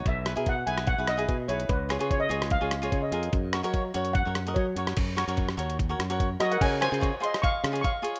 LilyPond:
<<
  \new Staff \with { instrumentName = "Steel pan" } { \time 4/4 \key fis \mixolydian \tempo 4 = 146 e''4 fis''8 gis''8 fis''8 dis''8 r8 cis''8 | b'4 cis''16 dis''8. eis''4 cis''16 dis''8 r16 | r2 fis''4 cis''4 | r2. r8 <fis' dis''>16 <ais' fis''>16 |
\key des \major <des'' aes''>8 <c'' aes''>4 <ees'' c'''>8 <f'' des'''>4 <f'' des'''>4 | }
  \new Staff \with { instrumentName = "Cavaquinho" } { \time 4/4 \key fis \mixolydian r8 <e' gis' b'>16 <e' gis' ais'>8 r16 <e' gis' b'>8 r16 <e' gis' b'>16 r16 <e' gis' b'>8 r16 <e' gis' b'>8 | r8 <eis' gis' cis''>16 <eis' gis' cis''>8 r16 <eis' gis' cis''>8 r16 <eis' gis' cis''>16 r16 <eis' gis' cis''>8 r16 <eis' gis' ais'>8 | r8 <fis' ais' cis''>16 <fis' ais' cis''>8 r16 <fis' ais' cis''>8 r16 <fis' ais' cis''>16 r16 <fis' ais' dis''>8 r16 <fis' ais' cis''>8 | r8 <fis' ais' cis''>16 <fis' ais' cis''>8 r16 <fis' ais' cis''>8 r16 <fis' ais' cis''>16 r16 <fis' ais' cis''>8 r16 <fis' ais' cis''>8 |
\key des \major r8 <f' aes' des''>16 <f' aes' c''>16 <f' aes' des''>16 r16 <f' aes' c''>8. r8 <f' aes' des''>8 r16 <f' aes' des''>8 | }
  \new Staff \with { instrumentName = "Fingered electric bass" } { \clef bass \time 4/4 \key fis \mixolydian b,,8. b,8. b,,8. b,,8. b,8 b,,8 | cis,8. cis8. cis,8. cis,8. cis8 eis,8 | fis,8. fis8. fis,8. fis,8. fis8 fis,8 | fis,8. fis,8. dis,4 fis,4 fis8 |
\key des \major des8. des8 r4 r16 des8 r4 | }
  \new DrumStaff \with { instrumentName = "Drums" } \drummode { \time 4/4 <hh bd>8 <hh ss>16 hh16 <hh bd>8 hh16 <hh ss>16 <hh bd>8 <hh ss>16 hh16 <hh bd>8 hh16 hh16 | <hh bd>8 <hh ss>16 hh16 <hh bd>8 hh16 <hh ss>16 <hh bd>8 <hh ss>16 hh16 <hh bd>8 hh16 hh16 | <hh bd>8 <hh ss>16 hh16 <hh bd>8 hh16 hh16 <hh bd>8 <hh ss>16 hh16 <hh bd>8 hh16 <hh ss>16 | <cymc hh bd>8 <hh ss>16 hh16 <hh bd>16 ss16 hh16 hh16 <hh bd>8 <hh ss>16 hh16 <hh bd>8 <hh ss>16 hh16 |
<cymc hh bd>8 <hh ss>16 hh16 <hh bd>8 hh16 <hh ss>16 <hh bd>8 <hh ss>16 hh16 <hh bd>8 hh16 hh16 | }
>>